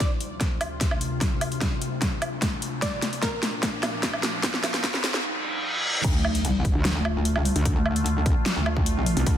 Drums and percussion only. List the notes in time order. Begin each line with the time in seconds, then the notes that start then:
0.00 kick, snare, closed hi-hat
0.20 closed hi-hat
0.41 kick, snare, closed hi-hat
0.61 closed hi-hat, low woodblock
0.81 kick, snare, closed hi-hat
0.91 low woodblock
1.01 closed hi-hat
1.21 kick, snare, closed hi-hat
1.41 closed hi-hat, low woodblock
1.52 closed hi-hat
1.61 kick, snare, closed hi-hat
1.82 closed hi-hat
2.02 kick, snare, closed hi-hat
2.22 closed hi-hat, low woodblock
2.42 kick, snare, closed hi-hat
2.62 closed hi-hat
2.82 kick, snare, closed hi-hat
3.02 snare, closed hi-hat
3.13 closed hi-hat
3.23 kick, snare, closed hi-hat
3.43 snare, closed hi-hat
3.63 kick, snare, closed hi-hat
3.83 snare, closed hi-hat, low woodblock
4.03 kick, snare, closed hi-hat
4.13 low woodblock
4.23 snare, closed hi-hat
4.43 kick, snare, closed hi-hat
4.54 snare
4.64 snare, closed hi-hat, low woodblock
4.74 snare, closed hi-hat
4.84 kick, snare, closed hi-hat
4.94 snare
5.04 snare, closed hi-hat
5.14 snare
6.04 kick, closed hi-hat, crash
6.25 low woodblock
6.35 closed hi-hat
6.45 closed hi-hat
6.65 kick, closed hi-hat
6.85 snare, closed hi-hat
7.05 low woodblock
7.25 closed hi-hat
7.36 low woodblock
7.45 open hi-hat
7.56 closed hi-hat
7.65 kick, closed hi-hat
7.86 low woodblock
7.96 closed hi-hat
8.06 closed hi-hat
8.26 kick, closed hi-hat
8.46 snare, closed hi-hat
8.66 low woodblock
8.77 kick
8.86 closed hi-hat
9.06 open hi-hat
9.17 closed hi-hat
9.27 kick, closed hi-hat